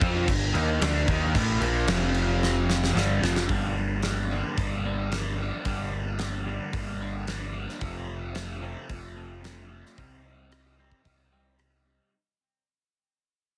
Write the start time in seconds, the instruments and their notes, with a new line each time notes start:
Already playing: string machine D4 A#4 G5
0.00 picked electric bass F2, overdriven electric guitar F3 C4 F4, kick, crash
0.26 picked electric bass G1, overdriven electric guitar G2 D3, kick, crash
0.53 picked electric bass D#2, overdriven electric guitar D#3 A#3 D#4, crash
0.79 picked electric bass D2, overdriven electric guitar D3 A3 D4, snare, crash
1.07 picked electric bass D#2, overdriven electric guitar D#3 A#3 D#4, kick, crash
1.34 picked electric bass A1, overdriven electric guitar A2 E3 A3, kick, crash
1.60 picked electric bass A#1, overdriven electric guitar A#2 F3 A#3, crash
1.86 picked electric bass F1, overdriven electric guitar F2 C3 F3, string machine C4 F4 F5, snare, crash
2.14 crash
2.43 snare
2.70 snare
2.84 snare
2.94 picked electric bass G1, overdriven electric guitar G2 D3 G3, string machine G5, snare
2.98 string machine D4 A#4
3.20 picked electric bass F1, overdriven electric guitar F2 C3 F3, snare
3.36 snare
3.46 picked electric bass G1, overdriven electric guitar G2 D3 G3 A#3 D4, kick, open hi-hat
3.50 clean electric guitar G2
3.78 clean electric guitar G2 D3
4.03 overdriven electric guitar G2 D3 G3 A#3 D4, snare, open hi-hat
4.30 overdriven electric guitar G2 D3 G3 A#3 D4
4.57 picked electric bass G1, overdriven electric guitar G2 D3 G3 A#3 D4, kick, open hi-hat
4.85 clean electric guitar G2 D3 G3
5.10 overdriven electric guitar G2 D3 G3 A#3 D4, snare, open hi-hat
5.37 overdriven electric guitar G2 D3 G3 A#3 D4
5.64 picked electric bass G1, overdriven electric guitar G2 D3 G3 A#3 D4, kick, open hi-hat
5.93 clean electric guitar G2 D3
6.18 overdriven electric guitar G2 D3 G3 A#3 D4, snare, open hi-hat
6.45 overdriven electric guitar G2 D3 G3 A#3 D4
6.71 picked electric bass G1, overdriven electric guitar G2 D3 G3 A#3 D4, kick, open hi-hat
7.01 clean electric guitar G2 D3 G3
7.27 overdriven electric guitar G2 D3 G3 A#3 D4, snare, open hi-hat
7.53 overdriven electric guitar G2 D3 G3 A#3 D4
7.69 snare
7.79 picked electric bass F1, overdriven electric guitar F2 C3 F3 A3 C4, kick, open hi-hat
8.10 clean electric guitar F2 C3
8.33 overdriven electric guitar F2 C3 F3 A3 C4, snare, open hi-hat
8.61 overdriven electric guitar F2 C3 F3 A3 C4
8.89 picked electric bass F1, overdriven electric guitar F2 C3 F3 A3 C4, kick, open hi-hat
9.16 clean electric guitar F2 C3 F3
9.43 overdriven electric guitar F2 C3 F3 A3 C4, snare, open hi-hat
9.68 overdriven electric guitar F2 C3 F3 A3 C4
9.86 snare
9.97 picked electric bass C2, overdriven electric guitar C3 G3 C4 D#4, kick, open hi-hat
10.23 clean electric guitar C3 G3
10.50 overdriven electric guitar C3 G3 C4 D#4, cross-stick, open hi-hat
10.77 overdriven electric guitar C3 G3 C4 D#4
10.92 kick
11.04 picked electric bass C2, overdriven electric guitar C3 G3 C4 D#4, kick, open hi-hat
11.32 clean electric guitar C3 G3 C4
11.58 overdriven electric guitar C3 G3 C4 D#4, cross-stick, open hi-hat
11.85 overdriven electric guitar C3 G3 C4 D#4